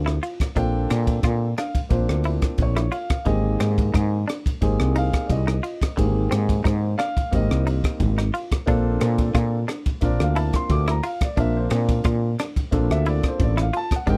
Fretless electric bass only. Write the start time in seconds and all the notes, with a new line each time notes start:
Already playing: D2
0.56 A#1
0.91 A#2
1.23 A#2
1.90 A#1
2.09 D2
2.58 A#1
3.26 G#1
3.60 G#2
3.95 G#2
4.62 G#1
4.81 C2
5.30 C2
5.98 G#1
6.32 G#2
6.65 G#2
7.33 G#1
7.51 C2
8.00 G#1
8.68 A#1
9.02 A#2
9.34 A#2
10.02 A#1
10.20 D2
10.70 D2
11.37 A#1
11.71 A#2
12.05 A#2
12.72 A#1
12.90 D2
13.40 A1
14.07 G#1